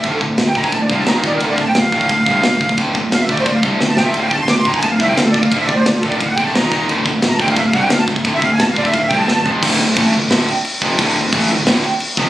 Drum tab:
CC |----------------|----------------|----------------|----------------|
RD |b---b---b---b---|b---b---b---b---|b---b---b-------|b---b---b---b---|
SD |----o-------o---|----o-------o---|----o-------o-o-|----o-------o---|
FT |----------------|----------------|----------------|----------------|
BD |o-o---ooo-o---o-|--o---ooo-o---oo|o-o---ooo-o-----|--o---ooo-o---oo|

CC |----------------|----------------|----------------|x-x-x-x-x-x-x-x-|
RD |b---b---b---b---|b---b---b---b---|b---b---b-------|----------------|
SD |----o-------o---|----o-------o---|----o-------o---|--------o-------|
FT |----------------|----------------|--------------o-|----------------|
BD |o-o---ooo-o---o-|--o---ooo-o---oo|o-o---ooo-o-----|o---o---------o-|

CC |x-x-x-x-x-x-x-x-|
RD |----------------|
SD |--------o-------|
FT |----------------|
BD |o---o---------o-|